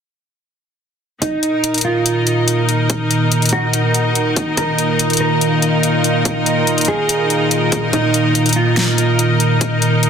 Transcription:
1.22 A#2 D#3 D#4 A#4, kick, closed hi-hat
1.43 closed hi-hat
1.48 A#4
1.64 closed hi-hat
1.74 closed hi-hat
1.78 closed hi-hat
1.81 F4, closed hi-hat
2.04 D#5, closed hi-hat
2.27 closed hi-hat
2.48 closed hi-hat
2.69 closed hi-hat
2.90 kick, closed hi-hat
3.11 closed hi-hat
3.32 closed hi-hat
3.42 closed hi-hat
3.46 closed hi-hat
3.49 F#4, kick, closed hi-hat
3.73 closed hi-hat
3.94 closed hi-hat
4.15 closed hi-hat
4.36 kick, closed hi-hat
4.57 F4 A#4, kick, closed hi-hat
4.78 closed hi-hat
4.99 closed hi-hat
5.10 closed hi-hat
5.13 closed hi-hat
5.17 A#4, closed hi-hat
5.41 closed hi-hat
5.62 closed hi-hat
5.83 closed hi-hat
6.04 closed hi-hat
6.25 kick, closed hi-hat
6.46 closed hi-hat
6.67 closed hi-hat
6.78 closed hi-hat
6.81 closed hi-hat
6.85 G#4, kick, closed hi-hat
7.09 closed hi-hat
7.30 closed hi-hat
7.51 closed hi-hat
7.72 kick, closed hi-hat
7.93 D#4 A#4, kick, closed hi-hat
8.14 closed hi-hat
8.35 closed hi-hat
8.46 closed hi-hat
8.49 closed hi-hat
8.53 F4, closed hi-hat
8.77 snare, closed hi-hat
8.98 closed hi-hat
9.19 closed hi-hat
9.40 closed hi-hat
9.61 kick, closed hi-hat
9.82 closed hi-hat
10.03 closed hi-hat

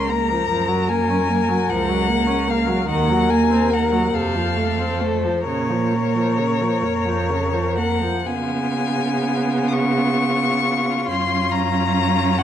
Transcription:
Already playing: C#2 C#4 A#4
0.08 A#3 A#5
0.29 F3
0.49 F#2 F3
0.68 F#3
0.88 A#3 G#5
1.10 C#4
1.29 A#3
1.49 F#3
1.69 C#2 F3 F#5
1.89 F#3
2.08 A#3
2.27 C#4
2.48 A#3 F5
2.67 F#3
2.87 D#2 D#3 A#4 F#5
3.09 F#3
3.29 A#3 G#5
3.50 C4
3.70 A#3 F#5
3.92 F#3
4.12 F2 C3 A4 F5
4.35 F3
4.56 A3
4.78 C4
5.01 A3 C5
5.24 F3
5.46 A#2 C#3 A#4 C#5
5.70 F3
5.92 A#3
6.15 F3
6.38 C#3
6.61 F3
6.83 F2 A#3
7.05 F3
7.29 C#3
7.53 F3
7.76 A#3 F#5
8.01 F3
8.25 C#3 B3 F4 G#5
9.68 D#6
9.73 C#6
11.08 F#2 C#4 C6
11.51 A#5
12.38 F#5

